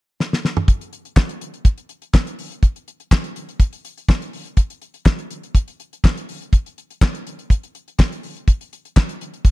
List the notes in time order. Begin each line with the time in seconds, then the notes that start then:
0.20 snare
0.33 snare
0.45 snare
0.57 mid tom
0.68 kick, closed hi-hat
0.81 closed hi-hat
0.93 closed hi-hat
1.05 closed hi-hat
1.16 kick, snare, clap
1.29 closed hi-hat
1.41 closed hi-hat
1.54 closed hi-hat
1.65 kick, closed hi-hat
1.78 closed hi-hat
1.89 closed hi-hat
2.02 closed hi-hat
2.14 kick, snare, clap
2.27 closed hi-hat
2.39 open hi-hat
2.52 closed hi-hat
2.63 kick, closed hi-hat
2.76 closed hi-hat
2.88 closed hi-hat
3.00 closed hi-hat
3.11 kick, snare, clap
3.24 closed hi-hat
3.36 closed hi-hat
3.49 closed hi-hat
3.60 kick, closed hi-hat
3.73 closed hi-hat
3.85 closed hi-hat
3.98 closed hi-hat
4.09 kick, snare, clap
4.22 closed hi-hat
4.33 open hi-hat
4.46 closed hi-hat
4.57 kick, closed hi-hat
4.70 closed hi-hat
4.82 closed hi-hat
4.94 closed hi-hat
5.06 kick, snare, clap
5.19 closed hi-hat
5.31 closed hi-hat
5.43 closed hi-hat
5.55 kick, closed hi-hat
5.68 closed hi-hat
5.80 closed hi-hat
5.93 closed hi-hat
6.04 kick, snare, clap
6.17 closed hi-hat
6.29 open hi-hat
6.42 closed hi-hat
6.53 kick, closed hi-hat
6.66 closed hi-hat
6.78 closed hi-hat
6.90 closed hi-hat
7.01 kick, snare, clap
7.15 closed hi-hat
7.27 closed hi-hat
7.39 closed hi-hat
7.50 kick, closed hi-hat
7.63 closed hi-hat
7.75 closed hi-hat
7.88 closed hi-hat
7.99 kick, snare, clap
8.12 closed hi-hat
8.23 open hi-hat
8.37 closed hi-hat
8.48 kick, closed hi-hat
8.61 closed hi-hat
8.73 closed hi-hat
8.85 closed hi-hat
8.96 kick, snare, clap
9.09 closed hi-hat
9.21 closed hi-hat
9.34 closed hi-hat
9.45 kick, closed hi-hat